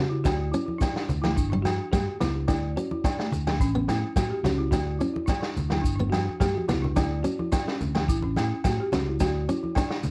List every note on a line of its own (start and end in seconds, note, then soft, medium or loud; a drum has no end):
0.00 0.23 C#3 medium
0.00 0.20 C#4 medium
0.00 0.10 F#4 medium
0.10 0.23 E4 medium
0.24 0.52 D2 loud
0.24 0.47 D4 medium
0.24 0.51 F#4 medium
0.24 kick medium
0.24 snare medium
0.24 low agogo medium
0.24 maracas medium
0.52 0.75 C#4 medium
0.52 0.65 E4 medium
0.52 maracas medium
0.66 0.80 E4 medium
0.66 high conga medium
0.78 0.92 D4 medium
0.78 kick medium
0.78 snare medium
0.78 low agogo medium
0.78 maracas medium
0.83 1.04 D4 medium
0.93 1.21 D4 medium
0.93 snare medium
1.09 1.35 D2 medium
1.09 low conga medium
1.09 maracas medium
1.22 1.46 A3 medium
1.22 1.35 E4 medium
1.22 snare medium
1.22 high conga medium
1.22 low agogo medium
1.36 1.63 G1 medium
1.36 1.49 D4 medium
1.36 kick medium
1.36 maracas medium
1.50 1.74 G3 medium
1.50 1.64 D4 medium
1.50 low conga medium
1.62 1.78 G2 medium
1.62 1.90 F#4 medium
1.62 snare medium
1.62 high conga medium
1.62 low agogo medium
1.62 maracas medium
1.91 2.06 G2 loud
1.91 2.15 A3 medium
1.91 2.06 G4 medium
1.91 kick medium
1.91 snare medium
1.91 low agogo medium
1.91 maracas medium
2.06 2.20 F#4 medium
2.20 2.47 C#2 medium
2.20 2.43 B3 medium
2.20 2.35 E4 medium
2.20 snare medium
2.20 low conga medium
2.20 maracas medium
2.34 2.48 D4 medium
2.48 2.75 D2 loud
2.48 2.70 D4 medium
2.48 2.75 E4 medium
2.48 kick medium
2.48 snare medium
2.48 low agogo medium
2.48 maracas medium
2.76 2.99 C#4 medium
2.76 2.91 F#4 medium
2.76 maracas medium
2.91 3.04 E4 medium
2.91 high conga medium
3.04 3.19 D4 medium
3.04 3.27 D4 medium
3.04 kick medium
3.04 snare medium
3.04 low agogo medium
3.04 maracas loud
3.19 3.46 A3 medium
3.19 snare medium
3.32 3.59 D2 medium
3.32 low conga medium
3.32 maracas medium
3.47 3.69 A3 medium
3.47 3.60 D4 medium
3.47 snare medium
3.47 high conga medium
3.47 low agogo medium
3.60 3.87 A1 loud
3.60 3.74 C#4 medium
3.60 kick medium
3.60 maracas loud
3.75 3.97 B3 medium
3.75 3.88 C#4 medium
3.75 low conga medium
3.88 4.02 A2 loud
3.88 4.15 E4 medium
3.88 snare medium
3.88 high conga medium
3.88 low agogo medium
3.88 maracas medium
4.16 4.31 A2 medium
4.16 4.39 A3 medium
4.16 4.31 F#4 medium
4.16 kick medium
4.16 snare medium
4.16 low agogo medium
4.16 maracas medium
4.30 4.44 G4 medium
4.43 4.70 C#2 medium
4.43 4.67 C#4 medium
4.43 4.59 F#4 medium
4.43 snare medium
4.43 low conga medium
4.43 maracas medium
4.58 4.72 E4 medium
4.71 4.99 D2 loud
4.71 4.95 D4 loud
4.71 4.99 F#4 loud
4.71 kick medium
4.71 snare medium
4.71 low agogo medium
4.71 maracas medium
4.99 5.23 C#4 medium
4.99 5.12 E4 medium
4.99 high conga medium
4.99 maracas medium
5.14 5.27 E4 medium
5.14 high conga medium
5.26 5.39 D4 medium
5.26 5.51 D4 medium
5.26 kick medium
5.26 snare medium
5.26 low agogo medium
5.26 maracas medium
5.41 5.69 D4 medium
5.41 snare medium
5.57 5.83 D2 medium
5.57 low conga medium
5.57 maracas medium
5.69 5.93 A3 medium
5.69 5.83 E4 medium
5.69 snare medium
5.69 high conga medium
5.69 low agogo medium
5.82 6.11 G1 loud
5.82 5.94 D4 medium
5.82 kick medium
5.82 maracas loud
5.96 6.10 D4 medium
5.96 low conga medium
6.00 6.22 B3 medium
6.10 6.26 G2 loud
6.10 6.38 F#4 medium
6.10 snare medium
6.10 high conga medium
6.10 low agogo medium
6.14 maracas medium
6.29 high conga medium
6.40 6.54 G2 loud
6.40 6.63 A3 medium
6.40 6.54 G4 medium
6.40 kick medium
6.40 snare medium
6.40 high conga medium
6.40 low agogo medium
6.40 maracas loud
6.55 6.68 F#4 medium
6.55 high conga medium
6.68 6.95 C#2 medium
6.68 6.91 B3 medium
6.68 6.82 E4 medium
6.68 snare medium
6.68 low conga medium
6.68 maracas medium
6.82 6.95 D4 medium
6.82 low conga medium
6.96 7.23 D2 medium
6.96 7.18 D4 medium
6.96 7.23 E4 medium
6.96 kick loud
6.96 snare medium
6.96 low agogo medium
6.96 maracas loud
7.23 7.46 C#4 medium
7.23 7.38 F#4 medium
7.23 maracas medium
7.39 7.52 E4 medium
7.39 high conga medium
7.52 7.66 D4 medium
7.52 7.74 D4 medium
7.52 kick medium
7.52 snare medium
7.52 low agogo medium
7.52 maracas loud
7.66 7.93 C#4 medium
7.66 snare medium
7.81 8.07 D2 medium
7.81 low conga medium
7.81 maracas medium
7.95 8.17 A3 medium
7.95 8.08 D4 medium
7.95 snare medium
7.95 high conga medium
7.95 low agogo medium
8.08 8.35 A1 loud
8.08 8.23 E4 medium
8.08 kick medium
8.08 maracas loud
8.22 8.36 C#4 medium
8.22 low conga medium
8.36 8.51 A2 loud
8.36 8.63 E4 medium
8.36 snare medium
8.36 high conga medium
8.36 low agogo medium
8.36 maracas medium
8.64 8.78 A2 medium
8.64 8.86 A3 medium
8.64 8.78 F#4 medium
8.64 kick medium
8.64 snare medium
8.64 low agogo medium
8.64 maracas loud
8.80 8.92 G4 medium
8.92 9.19 C#2 medium
8.92 9.14 C#4 medium
8.92 9.06 F#4 medium
8.92 snare medium
8.92 low conga medium
8.92 maracas medium
9.08 9.20 E4 medium
9.20 9.46 D2 loud
9.20 9.42 D4 medium
9.20 9.47 F#4 loud
9.20 kick medium
9.20 snare medium
9.20 low agogo medium
9.20 maracas medium
9.49 9.70 C#4 medium
9.49 9.62 E4 medium
9.49 maracas medium
9.63 9.75 E4 medium
9.63 high conga medium
9.75 9.89 D4 medium
9.75 9.98 D4 medium
9.75 kick medium
9.75 snare medium
9.75 low agogo medium
9.75 maracas loud
9.90 10.11 D4 medium
9.90 snare medium
10.03 10.11 D2 loud
10.03 low conga medium
10.03 maracas medium